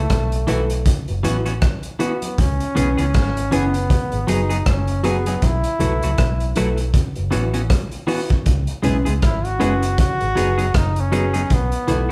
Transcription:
Already playing: trombone A3
0.10 fingered electric bass B1, kick, cross-stick, closed hi-hat
0.32 closed hi-hat
0.47 fingered electric bass B1, clean electric guitar E3 A3 E4 F#4, reed electric piano E4 A4 B4, closed hi-hat
0.70 closed hi-hat
0.86 kick, closed hi-hat, low conga
1.08 fingered electric bass F#1, reed electric piano F#4 B4, closed hi-hat
1.23 fingered electric bass A1, clean electric guitar E3 B3 C#4 F#4, reed electric piano E4 F#4 B4, closed hi-hat, high conga
1.46 clean electric guitar E3 B3 C#4 F#4, closed hi-hat
1.62 kick, cross-stick, closed hi-hat
1.83 closed hi-hat
1.99 clean electric guitar E3 B3 C#4 F#4, trombone B3, reed electric piano E4 F#4 B4, closed hi-hat
2.22 closed hi-hat, high conga
2.38 fingered electric bass C#2, trombone C#4, kick, closed hi-hat, low conga
2.60 closed hi-hat
2.75 fingered electric bass B1, clean electric guitar E3 B3 C#4 G#4, reed electric piano C#4 E4 B4, closed hi-hat, low conga
2.98 fingered electric bass C#2, clean electric guitar E3 B3 C#4 G#4, trombone C#4, closed hi-hat
3.14 fingered electric bass G#1, kick, cross-stick, closed hi-hat
3.37 closed hi-hat
3.51 fingered electric bass F#1, clean electric guitar E3 B3 C#4 G#4, trombone B3, reed electric piano C#4 E4 B4, closed hi-hat
3.74 closed hi-hat
3.90 kick, closed hi-hat, low conga
4.12 fingered electric bass G#1, reed electric piano G#4 B4, closed hi-hat
4.27 fingered electric bass F#1, clean electric guitar F#3 B3 D#4 G#4, trombone D#4, reed electric piano F#4 G#4 B4, closed hi-hat, high conga
4.49 clean electric guitar F#3 B3 D#4 G#4, closed hi-hat
4.66 fingered electric bass F#1, trombone C#4, kick, cross-stick, closed hi-hat
4.87 closed hi-hat
5.04 clean electric guitar F#3 B3 D#4 G#4, reed electric piano F#4 G#4 B4, closed hi-hat
5.08 trombone B3
5.26 clean electric guitar F#3 B3 D#4 G#4, closed hi-hat, high conga
5.42 fingered electric bass B1, trombone E4, kick, closed hi-hat, low conga
5.64 closed hi-hat
5.79 fingered electric bass B1, clean electric guitar F#3 A3 E4 F#4, reed electric piano E4 A4 B4, closed hi-hat, low conga
6.03 fingered electric bass C#2, clean electric guitar F#3 A3 E4 F#4, closed hi-hat
6.18 fingered electric bass B1, kick, cross-stick, closed hi-hat
6.40 closed hi-hat
6.56 fingered electric bass B1, clean electric guitar F#3 A3 E4 F#4, reed electric piano E4 A4 B4, closed hi-hat
6.77 closed hi-hat
6.94 kick, closed hi-hat, low conga
7.16 fingered electric bass F#1, reed electric piano F#4 B4, closed hi-hat
7.31 fingered electric bass A1, clean electric guitar E3 B3 C#4 F#4, reed electric piano E4 F#4 B4, closed hi-hat, high conga
7.54 clean electric guitar E3 B3 C#4 F#4, closed hi-hat
7.70 kick, cross-stick, closed hi-hat
7.92 closed hi-hat
8.07 clean electric guitar E3 B3 C#4 F#4, reed electric piano E4 F#4 B4, open hi-hat
8.30 kick, closed hi-hat, high conga
8.46 fingered electric bass C#2, kick, closed hi-hat, low conga
8.67 closed hi-hat
8.83 clean electric guitar G#3 B3 E4 G#4, reed electric piano C#4 E4 B4, closed hi-hat, low conga
8.87 fingered electric bass B1
9.05 fingered electric bass C#2, clean electric guitar G#3 B3 E4 G#4, closed hi-hat
9.22 fingered electric bass G#1, trombone E4, kick, cross-stick, closed hi-hat
9.45 trombone F#4, closed hi-hat
9.59 fingered electric bass F#1, clean electric guitar G#3 B3 E4 G#4, reed electric piano C#4 E4 B4, closed hi-hat
9.83 closed hi-hat
9.98 trombone F#4, kick, closed hi-hat, low conga
10.21 fingered electric bass G#1, reed electric piano G#4 B4, closed hi-hat
10.35 fingered electric bass F#1, clean electric guitar F#3 B3 D#4 G#4, reed electric piano F#4 G#4 B4, closed hi-hat, high conga
10.58 clean electric guitar F#3 B3 D#4 G#4, closed hi-hat
10.74 fingered electric bass F#1, trombone D#4, kick, cross-stick, closed hi-hat
10.96 trombone C#4, closed hi-hat
11.12 clean electric guitar F#3 B3 D#4 G#4, reed electric piano F#4 G#4 B4, closed hi-hat
11.34 clean electric guitar F#3 B3 D#4 G#4, closed hi-hat, high conga
11.50 fingered electric bass B1, trombone B3, kick, closed hi-hat, low conga
11.72 closed hi-hat
11.88 fingered electric bass B1, clean electric guitar E3 A3 E4 F#4, reed electric piano E4 A4 B4, closed hi-hat, low conga

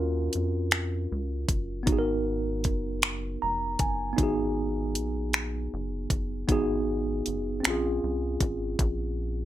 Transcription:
Already playing: analog synth bass D#2, tine electric piano C#4 F4 F#4 A#4
0.33 analog synth bass F2, closed hi-hat
0.71 finger snap, closed hi-hat
1.12 analog synth bass C#2
1.49 analog synth bass F#1, kick, closed hi-hat
1.83 tine electric piano B3 D#4, kick, closed hi-hat
1.88 analog synth bass G#1, tine electric piano F#4
1.93 tine electric piano G#4
1.99 tine electric piano A#4
2.64 analog synth bass F#1, kick, closed hi-hat
3.02 finger snap, closed hi-hat
3.42 analog synth bass F1, tine electric piano A#5
3.79 analog synth bass F#1, tine electric piano G#5, kick, closed hi-hat
4.13 tine electric piano B3 D#4
4.18 analog synth bass G#1, tine electric piano F#4, kick, closed hi-hat
4.23 tine electric piano G#4
4.95 analog synth bass A#1, closed hi-hat
5.33 finger snap, closed hi-hat
5.74 analog synth bass F#1
6.10 analog synth bass F#1, kick, closed hi-hat
6.48 analog synth bass G#1, tine electric piano B3 D#4 F#4, kick, closed hi-hat
6.52 tine electric piano G#4
7.26 analog synth bass F#1, closed hi-hat
7.60 tine electric piano C4 C#4
7.64 analog synth bass A#1, tine electric piano F4, finger snap, closed hi-hat
7.70 tine electric piano G#4
8.04 analog synth bass C2
8.40 analog synth bass G#1, kick, closed hi-hat
8.79 analog synth bass A#1, kick, closed hi-hat

